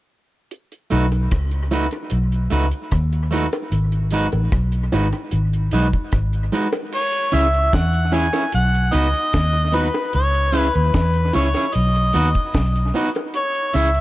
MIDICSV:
0, 0, Header, 1, 6, 480
1, 0, Start_track
1, 0, Tempo, 801068
1, 309, Time_signature, 4, 2, 24, 8
1, 8393, End_track
2, 0, Start_track
2, 0, Title_t, "Harmonica"
2, 0, Program_c, 0, 22
2, 4163, Note_on_c, 0, 73, 111
2, 4401, Note_on_c, 0, 76, 98
2, 4410, Note_off_c, 0, 73, 0
2, 4640, Note_on_c, 0, 78, 123
2, 4649, Note_off_c, 0, 76, 0
2, 4877, Note_on_c, 0, 80, 107
2, 4886, Note_off_c, 0, 78, 0
2, 5114, Note_off_c, 0, 80, 0
2, 5121, Note_on_c, 0, 78, 123
2, 5359, Note_on_c, 0, 75, 122
2, 5368, Note_off_c, 0, 78, 0
2, 5841, Note_on_c, 0, 71, 91
2, 5850, Note_off_c, 0, 75, 0
2, 6076, Note_off_c, 0, 71, 0
2, 6081, Note_on_c, 0, 73, 116
2, 6339, Note_off_c, 0, 73, 0
2, 6339, Note_on_c, 0, 71, 116
2, 6445, Note_off_c, 0, 71, 0
2, 6445, Note_on_c, 0, 71, 92
2, 6796, Note_off_c, 0, 71, 0
2, 6801, Note_on_c, 0, 73, 84
2, 7034, Note_on_c, 0, 75, 89
2, 7043, Note_off_c, 0, 73, 0
2, 7754, Note_off_c, 0, 75, 0
2, 8006, Note_on_c, 0, 73, 113
2, 8243, Note_on_c, 0, 76, 96
2, 8252, Note_off_c, 0, 73, 0
2, 8393, Note_off_c, 0, 76, 0
2, 8393, End_track
3, 0, Start_track
3, 0, Title_t, "Clean electric guitar"
3, 0, Program_c, 1, 27
3, 541, Note_on_c, 1, 57, 76
3, 547, Note_on_c, 1, 63, 80
3, 549, Note_on_c, 1, 66, 83
3, 553, Note_on_c, 1, 71, 86
3, 627, Note_off_c, 1, 57, 0
3, 629, Note_off_c, 1, 63, 0
3, 631, Note_off_c, 1, 66, 0
3, 632, Note_off_c, 1, 71, 0
3, 1026, Note_on_c, 1, 57, 81
3, 1030, Note_on_c, 1, 63, 76
3, 1034, Note_on_c, 1, 66, 80
3, 1038, Note_on_c, 1, 71, 98
3, 1109, Note_off_c, 1, 57, 0
3, 1111, Note_off_c, 1, 63, 0
3, 1113, Note_off_c, 1, 66, 0
3, 1115, Note_off_c, 1, 71, 0
3, 1501, Note_on_c, 1, 57, 83
3, 1507, Note_on_c, 1, 63, 80
3, 1509, Note_on_c, 1, 66, 93
3, 1514, Note_on_c, 1, 71, 105
3, 1586, Note_off_c, 1, 57, 0
3, 1590, Note_off_c, 1, 63, 0
3, 1591, Note_off_c, 1, 66, 0
3, 1593, Note_off_c, 1, 71, 0
3, 1982, Note_on_c, 1, 57, 84
3, 1989, Note_on_c, 1, 63, 75
3, 1991, Note_on_c, 1, 66, 93
3, 1996, Note_on_c, 1, 71, 85
3, 2067, Note_off_c, 1, 57, 0
3, 2070, Note_off_c, 1, 63, 0
3, 2072, Note_off_c, 1, 66, 0
3, 2074, Note_off_c, 1, 71, 0
3, 2470, Note_on_c, 1, 56, 81
3, 2474, Note_on_c, 1, 63, 89
3, 2479, Note_on_c, 1, 66, 86
3, 2479, Note_on_c, 1, 71, 96
3, 2551, Note_off_c, 1, 56, 0
3, 2553, Note_off_c, 1, 63, 0
3, 2556, Note_off_c, 1, 66, 0
3, 2556, Note_off_c, 1, 71, 0
3, 2952, Note_on_c, 1, 56, 74
3, 2956, Note_on_c, 1, 63, 75
3, 2957, Note_on_c, 1, 66, 76
3, 2961, Note_on_c, 1, 71, 83
3, 3032, Note_off_c, 1, 56, 0
3, 3034, Note_off_c, 1, 63, 0
3, 3035, Note_off_c, 1, 66, 0
3, 3037, Note_off_c, 1, 71, 0
3, 3432, Note_on_c, 1, 56, 85
3, 3432, Note_on_c, 1, 63, 82
3, 3440, Note_on_c, 1, 66, 81
3, 3440, Note_on_c, 1, 71, 81
3, 3512, Note_off_c, 1, 63, 0
3, 3513, Note_off_c, 1, 56, 0
3, 3516, Note_off_c, 1, 66, 0
3, 3516, Note_off_c, 1, 71, 0
3, 3909, Note_on_c, 1, 56, 85
3, 3912, Note_on_c, 1, 63, 75
3, 3919, Note_on_c, 1, 66, 95
3, 3921, Note_on_c, 1, 71, 87
3, 3991, Note_off_c, 1, 56, 0
3, 3993, Note_off_c, 1, 63, 0
3, 3996, Note_off_c, 1, 66, 0
3, 3997, Note_off_c, 1, 71, 0
3, 4386, Note_on_c, 1, 61, 86
3, 4390, Note_on_c, 1, 64, 93
3, 4396, Note_on_c, 1, 68, 85
3, 4397, Note_on_c, 1, 73, 90
3, 4470, Note_off_c, 1, 61, 0
3, 4472, Note_off_c, 1, 64, 0
3, 4475, Note_off_c, 1, 68, 0
3, 4475, Note_off_c, 1, 73, 0
3, 4864, Note_on_c, 1, 61, 73
3, 4868, Note_on_c, 1, 64, 79
3, 4874, Note_on_c, 1, 68, 87
3, 4876, Note_on_c, 1, 73, 90
3, 4949, Note_off_c, 1, 61, 0
3, 4951, Note_off_c, 1, 64, 0
3, 4954, Note_off_c, 1, 68, 0
3, 4955, Note_off_c, 1, 73, 0
3, 4990, Note_on_c, 1, 73, 74
3, 4995, Note_on_c, 1, 68, 67
3, 4997, Note_on_c, 1, 64, 61
3, 5001, Note_on_c, 1, 61, 52
3, 5052, Note_off_c, 1, 73, 0
3, 5054, Note_off_c, 1, 68, 0
3, 5055, Note_off_c, 1, 64, 0
3, 5057, Note_off_c, 1, 61, 0
3, 5343, Note_on_c, 1, 59, 70
3, 5347, Note_on_c, 1, 63, 87
3, 5352, Note_on_c, 1, 66, 86
3, 5356, Note_on_c, 1, 71, 92
3, 5429, Note_off_c, 1, 59, 0
3, 5431, Note_off_c, 1, 63, 0
3, 5433, Note_off_c, 1, 66, 0
3, 5435, Note_off_c, 1, 71, 0
3, 5826, Note_on_c, 1, 59, 82
3, 5831, Note_on_c, 1, 63, 82
3, 5835, Note_on_c, 1, 66, 92
3, 5840, Note_on_c, 1, 71, 83
3, 5910, Note_off_c, 1, 59, 0
3, 5913, Note_off_c, 1, 63, 0
3, 5915, Note_off_c, 1, 66, 0
3, 5917, Note_off_c, 1, 71, 0
3, 6306, Note_on_c, 1, 61, 95
3, 6310, Note_on_c, 1, 64, 89
3, 6313, Note_on_c, 1, 68, 104
3, 6318, Note_on_c, 1, 73, 86
3, 6390, Note_off_c, 1, 61, 0
3, 6392, Note_off_c, 1, 64, 0
3, 6394, Note_off_c, 1, 68, 0
3, 6396, Note_off_c, 1, 73, 0
3, 6793, Note_on_c, 1, 61, 76
3, 6798, Note_on_c, 1, 68, 86
3, 6799, Note_on_c, 1, 64, 73
3, 6805, Note_on_c, 1, 73, 95
3, 6874, Note_off_c, 1, 61, 0
3, 6876, Note_off_c, 1, 68, 0
3, 6877, Note_off_c, 1, 64, 0
3, 6880, Note_off_c, 1, 73, 0
3, 6921, Note_on_c, 1, 73, 73
3, 6927, Note_on_c, 1, 68, 76
3, 6928, Note_on_c, 1, 64, 66
3, 6933, Note_on_c, 1, 61, 58
3, 6978, Note_off_c, 1, 73, 0
3, 6981, Note_off_c, 1, 68, 0
3, 6982, Note_off_c, 1, 64, 0
3, 6984, Note_off_c, 1, 61, 0
3, 7274, Note_on_c, 1, 59, 94
3, 7277, Note_on_c, 1, 63, 98
3, 7278, Note_on_c, 1, 66, 103
3, 7285, Note_on_c, 1, 71, 107
3, 7354, Note_off_c, 1, 59, 0
3, 7356, Note_off_c, 1, 63, 0
3, 7356, Note_off_c, 1, 66, 0
3, 7360, Note_off_c, 1, 71, 0
3, 7754, Note_on_c, 1, 59, 79
3, 7760, Note_on_c, 1, 63, 92
3, 7764, Note_on_c, 1, 66, 103
3, 7768, Note_on_c, 1, 71, 88
3, 7835, Note_off_c, 1, 59, 0
3, 7838, Note_off_c, 1, 63, 0
3, 7840, Note_off_c, 1, 66, 0
3, 7842, Note_off_c, 1, 71, 0
3, 8234, Note_on_c, 1, 61, 83
3, 8242, Note_on_c, 1, 64, 99
3, 8244, Note_on_c, 1, 68, 85
3, 8247, Note_on_c, 1, 73, 103
3, 8315, Note_off_c, 1, 61, 0
3, 8319, Note_off_c, 1, 64, 0
3, 8320, Note_off_c, 1, 68, 0
3, 8321, Note_off_c, 1, 73, 0
3, 8393, End_track
4, 0, Start_track
4, 0, Title_t, "Fingered electric bass"
4, 0, Program_c, 2, 33
4, 552, Note_on_c, 2, 35, 103
4, 766, Note_off_c, 2, 35, 0
4, 792, Note_on_c, 2, 37, 94
4, 1118, Note_off_c, 2, 37, 0
4, 1269, Note_on_c, 2, 35, 90
4, 1485, Note_off_c, 2, 35, 0
4, 1513, Note_on_c, 2, 37, 92
4, 1623, Note_off_c, 2, 37, 0
4, 1751, Note_on_c, 2, 39, 84
4, 2077, Note_off_c, 2, 39, 0
4, 2228, Note_on_c, 2, 32, 95
4, 2556, Note_off_c, 2, 32, 0
4, 2595, Note_on_c, 2, 33, 74
4, 2698, Note_off_c, 2, 33, 0
4, 2712, Note_on_c, 2, 35, 82
4, 2927, Note_off_c, 2, 35, 0
4, 2953, Note_on_c, 2, 32, 81
4, 3063, Note_off_c, 2, 32, 0
4, 3192, Note_on_c, 2, 32, 96
4, 3406, Note_off_c, 2, 32, 0
4, 3431, Note_on_c, 2, 35, 92
4, 3542, Note_off_c, 2, 35, 0
4, 3673, Note_on_c, 2, 32, 88
4, 3887, Note_off_c, 2, 32, 0
4, 4395, Note_on_c, 2, 37, 110
4, 4608, Note_off_c, 2, 37, 0
4, 4637, Note_on_c, 2, 40, 92
4, 4962, Note_off_c, 2, 40, 0
4, 5119, Note_on_c, 2, 35, 103
4, 5331, Note_off_c, 2, 35, 0
4, 5360, Note_on_c, 2, 37, 100
4, 5468, Note_off_c, 2, 37, 0
4, 5597, Note_on_c, 2, 39, 91
4, 5922, Note_off_c, 2, 39, 0
4, 6080, Note_on_c, 2, 37, 104
4, 6403, Note_off_c, 2, 37, 0
4, 6445, Note_on_c, 2, 39, 85
4, 6545, Note_off_c, 2, 39, 0
4, 6559, Note_on_c, 2, 40, 101
4, 6771, Note_off_c, 2, 40, 0
4, 6803, Note_on_c, 2, 37, 92
4, 6910, Note_off_c, 2, 37, 0
4, 7044, Note_on_c, 2, 35, 97
4, 7254, Note_off_c, 2, 35, 0
4, 7280, Note_on_c, 2, 39, 95
4, 7388, Note_off_c, 2, 39, 0
4, 7519, Note_on_c, 2, 35, 112
4, 7732, Note_off_c, 2, 35, 0
4, 8239, Note_on_c, 2, 37, 95
4, 8393, Note_off_c, 2, 37, 0
4, 8393, End_track
5, 0, Start_track
5, 0, Title_t, "Muted clean electric guitar strokes"
5, 3560, Note_on_c, 9, 29, 30
5, 3620, Note_off_c, 9, 29, 0
5, 5711, Note_on_c, 9, 29, 43
5, 5771, Note_off_c, 9, 29, 0
5, 8393, End_track
6, 0, Start_track
6, 0, Title_t, "Drums"
6, 307, Note_on_c, 9, 42, 80
6, 367, Note_off_c, 9, 42, 0
6, 431, Note_on_c, 9, 42, 48
6, 490, Note_off_c, 9, 42, 0
6, 543, Note_on_c, 9, 42, 71
6, 603, Note_off_c, 9, 42, 0
6, 669, Note_on_c, 9, 42, 53
6, 670, Note_on_c, 9, 60, 54
6, 729, Note_off_c, 9, 42, 0
6, 730, Note_off_c, 9, 60, 0
6, 787, Note_on_c, 9, 42, 90
6, 789, Note_on_c, 9, 36, 123
6, 792, Note_on_c, 9, 37, 127
6, 847, Note_off_c, 9, 42, 0
6, 849, Note_off_c, 9, 36, 0
6, 851, Note_off_c, 9, 37, 0
6, 907, Note_on_c, 9, 42, 54
6, 967, Note_off_c, 9, 42, 0
6, 1025, Note_on_c, 9, 61, 69
6, 1027, Note_on_c, 9, 42, 78
6, 1085, Note_off_c, 9, 61, 0
6, 1087, Note_off_c, 9, 42, 0
6, 1144, Note_on_c, 9, 42, 61
6, 1154, Note_on_c, 9, 60, 62
6, 1204, Note_off_c, 9, 42, 0
6, 1214, Note_off_c, 9, 60, 0
6, 1257, Note_on_c, 9, 42, 103
6, 1317, Note_off_c, 9, 42, 0
6, 1391, Note_on_c, 9, 42, 51
6, 1451, Note_off_c, 9, 42, 0
6, 1499, Note_on_c, 9, 42, 82
6, 1559, Note_off_c, 9, 42, 0
6, 1626, Note_on_c, 9, 42, 58
6, 1686, Note_off_c, 9, 42, 0
6, 1746, Note_on_c, 9, 42, 82
6, 1750, Note_on_c, 9, 36, 92
6, 1752, Note_on_c, 9, 37, 97
6, 1806, Note_off_c, 9, 42, 0
6, 1809, Note_off_c, 9, 36, 0
6, 1812, Note_off_c, 9, 37, 0
6, 1873, Note_on_c, 9, 42, 53
6, 1933, Note_off_c, 9, 42, 0
6, 1989, Note_on_c, 9, 42, 79
6, 1990, Note_on_c, 9, 61, 61
6, 2049, Note_off_c, 9, 42, 0
6, 2050, Note_off_c, 9, 61, 0
6, 2113, Note_on_c, 9, 42, 61
6, 2115, Note_on_c, 9, 60, 79
6, 2173, Note_off_c, 9, 42, 0
6, 2175, Note_off_c, 9, 60, 0
6, 2229, Note_on_c, 9, 42, 82
6, 2289, Note_off_c, 9, 42, 0
6, 2349, Note_on_c, 9, 42, 47
6, 2409, Note_off_c, 9, 42, 0
6, 2460, Note_on_c, 9, 42, 80
6, 2520, Note_off_c, 9, 42, 0
6, 2590, Note_on_c, 9, 42, 49
6, 2592, Note_on_c, 9, 60, 54
6, 2650, Note_off_c, 9, 42, 0
6, 2652, Note_off_c, 9, 60, 0
6, 2709, Note_on_c, 9, 42, 85
6, 2710, Note_on_c, 9, 36, 122
6, 2714, Note_on_c, 9, 37, 114
6, 2769, Note_off_c, 9, 42, 0
6, 2770, Note_off_c, 9, 36, 0
6, 2774, Note_off_c, 9, 37, 0
6, 2828, Note_on_c, 9, 42, 55
6, 2888, Note_off_c, 9, 42, 0
6, 2949, Note_on_c, 9, 61, 76
6, 2952, Note_on_c, 9, 42, 79
6, 3009, Note_off_c, 9, 61, 0
6, 3012, Note_off_c, 9, 42, 0
6, 3072, Note_on_c, 9, 42, 56
6, 3073, Note_on_c, 9, 60, 63
6, 3132, Note_off_c, 9, 42, 0
6, 3133, Note_off_c, 9, 60, 0
6, 3184, Note_on_c, 9, 42, 107
6, 3244, Note_off_c, 9, 42, 0
6, 3316, Note_on_c, 9, 42, 54
6, 3376, Note_off_c, 9, 42, 0
6, 3423, Note_on_c, 9, 42, 77
6, 3483, Note_off_c, 9, 42, 0
6, 3554, Note_on_c, 9, 42, 58
6, 3556, Note_on_c, 9, 36, 68
6, 3614, Note_off_c, 9, 42, 0
6, 3616, Note_off_c, 9, 36, 0
6, 3666, Note_on_c, 9, 42, 76
6, 3671, Note_on_c, 9, 36, 95
6, 3671, Note_on_c, 9, 37, 100
6, 3726, Note_off_c, 9, 42, 0
6, 3731, Note_off_c, 9, 36, 0
6, 3731, Note_off_c, 9, 37, 0
6, 3793, Note_on_c, 9, 42, 49
6, 3853, Note_off_c, 9, 42, 0
6, 3909, Note_on_c, 9, 61, 55
6, 3911, Note_on_c, 9, 42, 71
6, 3969, Note_off_c, 9, 61, 0
6, 3971, Note_off_c, 9, 42, 0
6, 4030, Note_on_c, 9, 60, 83
6, 4035, Note_on_c, 9, 42, 64
6, 4090, Note_off_c, 9, 60, 0
6, 4095, Note_off_c, 9, 42, 0
6, 4149, Note_on_c, 9, 49, 92
6, 4209, Note_off_c, 9, 49, 0
6, 4272, Note_on_c, 9, 42, 55
6, 4331, Note_off_c, 9, 42, 0
6, 4387, Note_on_c, 9, 42, 80
6, 4447, Note_off_c, 9, 42, 0
6, 4519, Note_on_c, 9, 42, 53
6, 4578, Note_off_c, 9, 42, 0
6, 4633, Note_on_c, 9, 36, 125
6, 4634, Note_on_c, 9, 42, 89
6, 4639, Note_on_c, 9, 38, 127
6, 4693, Note_off_c, 9, 36, 0
6, 4694, Note_off_c, 9, 42, 0
6, 4699, Note_off_c, 9, 38, 0
6, 4751, Note_on_c, 9, 42, 56
6, 4811, Note_off_c, 9, 42, 0
6, 4867, Note_on_c, 9, 61, 82
6, 4877, Note_on_c, 9, 42, 92
6, 4927, Note_off_c, 9, 61, 0
6, 4937, Note_off_c, 9, 42, 0
6, 4993, Note_on_c, 9, 60, 65
6, 4996, Note_on_c, 9, 42, 57
6, 5053, Note_off_c, 9, 60, 0
6, 5056, Note_off_c, 9, 42, 0
6, 5107, Note_on_c, 9, 42, 110
6, 5167, Note_off_c, 9, 42, 0
6, 5240, Note_on_c, 9, 42, 54
6, 5300, Note_off_c, 9, 42, 0
6, 5348, Note_on_c, 9, 42, 82
6, 5408, Note_off_c, 9, 42, 0
6, 5475, Note_on_c, 9, 42, 63
6, 5535, Note_off_c, 9, 42, 0
6, 5592, Note_on_c, 9, 42, 98
6, 5596, Note_on_c, 9, 36, 104
6, 5597, Note_on_c, 9, 38, 109
6, 5652, Note_off_c, 9, 42, 0
6, 5656, Note_off_c, 9, 36, 0
6, 5657, Note_off_c, 9, 38, 0
6, 5719, Note_on_c, 9, 42, 60
6, 5779, Note_off_c, 9, 42, 0
6, 5832, Note_on_c, 9, 61, 65
6, 5837, Note_on_c, 9, 42, 68
6, 5892, Note_off_c, 9, 61, 0
6, 5897, Note_off_c, 9, 42, 0
6, 5958, Note_on_c, 9, 60, 85
6, 5959, Note_on_c, 9, 42, 57
6, 6018, Note_off_c, 9, 60, 0
6, 6019, Note_off_c, 9, 42, 0
6, 6070, Note_on_c, 9, 42, 84
6, 6130, Note_off_c, 9, 42, 0
6, 6196, Note_on_c, 9, 42, 54
6, 6256, Note_off_c, 9, 42, 0
6, 6308, Note_on_c, 9, 42, 80
6, 6368, Note_off_c, 9, 42, 0
6, 6438, Note_on_c, 9, 42, 50
6, 6498, Note_off_c, 9, 42, 0
6, 6554, Note_on_c, 9, 42, 88
6, 6556, Note_on_c, 9, 36, 109
6, 6558, Note_on_c, 9, 38, 127
6, 6614, Note_off_c, 9, 42, 0
6, 6616, Note_off_c, 9, 36, 0
6, 6618, Note_off_c, 9, 38, 0
6, 6672, Note_on_c, 9, 42, 59
6, 6732, Note_off_c, 9, 42, 0
6, 6791, Note_on_c, 9, 61, 81
6, 6795, Note_on_c, 9, 42, 83
6, 6850, Note_off_c, 9, 61, 0
6, 6855, Note_off_c, 9, 42, 0
6, 6913, Note_on_c, 9, 42, 64
6, 6917, Note_on_c, 9, 60, 63
6, 6973, Note_off_c, 9, 42, 0
6, 6977, Note_off_c, 9, 60, 0
6, 7026, Note_on_c, 9, 42, 117
6, 7086, Note_off_c, 9, 42, 0
6, 7161, Note_on_c, 9, 42, 61
6, 7221, Note_off_c, 9, 42, 0
6, 7269, Note_on_c, 9, 42, 86
6, 7329, Note_off_c, 9, 42, 0
6, 7396, Note_on_c, 9, 42, 63
6, 7401, Note_on_c, 9, 36, 72
6, 7456, Note_off_c, 9, 42, 0
6, 7461, Note_off_c, 9, 36, 0
6, 7514, Note_on_c, 9, 42, 79
6, 7517, Note_on_c, 9, 36, 93
6, 7519, Note_on_c, 9, 38, 109
6, 7574, Note_off_c, 9, 42, 0
6, 7577, Note_off_c, 9, 36, 0
6, 7579, Note_off_c, 9, 38, 0
6, 7643, Note_on_c, 9, 42, 62
6, 7703, Note_off_c, 9, 42, 0
6, 7759, Note_on_c, 9, 46, 55
6, 7759, Note_on_c, 9, 61, 65
6, 7819, Note_off_c, 9, 46, 0
6, 7819, Note_off_c, 9, 61, 0
6, 7880, Note_on_c, 9, 42, 62
6, 7886, Note_on_c, 9, 60, 76
6, 7940, Note_off_c, 9, 42, 0
6, 7946, Note_off_c, 9, 60, 0
6, 7992, Note_on_c, 9, 42, 96
6, 8052, Note_off_c, 9, 42, 0
6, 8118, Note_on_c, 9, 42, 51
6, 8178, Note_off_c, 9, 42, 0
6, 8230, Note_on_c, 9, 42, 82
6, 8289, Note_off_c, 9, 42, 0
6, 8355, Note_on_c, 9, 42, 53
6, 8393, Note_off_c, 9, 42, 0
6, 8393, End_track
0, 0, End_of_file